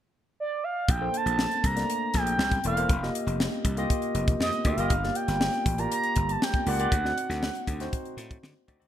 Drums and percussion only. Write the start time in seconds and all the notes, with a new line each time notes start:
0.89 kick, closed hi-hat
1.14 closed hi-hat
1.27 closed hi-hat
1.39 snare
1.51 closed hi-hat
1.64 kick, closed hi-hat
1.77 snare, closed hi-hat
1.90 closed hi-hat
2.14 kick, snare, closed hi-hat
2.27 closed hi-hat
2.39 snare
2.52 kick, closed hi-hat
2.64 closed hi-hat
2.77 closed hi-hat
2.89 kick, closed hi-hat
3.03 snare
3.15 closed hi-hat
3.28 closed hi-hat
3.40 snare
3.65 kick, closed hi-hat
3.77 closed hi-hat
3.90 kick, closed hi-hat
4.02 closed hi-hat
4.15 closed hi-hat
4.28 kick, closed hi-hat
4.41 snare
4.53 closed hi-hat
4.65 kick, closed hi-hat
4.78 closed hi-hat
4.90 kick, closed hi-hat
5.03 snare
5.15 closed hi-hat
5.28 snare, closed hi-hat
5.41 snare
5.53 closed hi-hat
5.66 kick, closed hi-hat
5.78 closed hi-hat
5.92 closed hi-hat
6.03 closed hi-hat
6.16 kick, closed hi-hat
6.29 closed hi-hat
6.42 snare
6.54 kick, closed hi-hat
6.67 open hi-hat
6.80 closed hi-hat
6.92 kick, closed hi-hat
7.05 snare
7.18 closed hi-hat
7.31 snare, closed hi-hat
7.43 snare
7.55 closed hi-hat
7.67 kick, closed hi-hat
7.80 snare, closed hi-hat
7.93 kick, closed hi-hat
8.05 closed hi-hat
8.18 snare, closed hi-hat
8.31 kick, closed hi-hat
8.43 snare
8.68 kick, closed hi-hat
8.82 closed hi-hat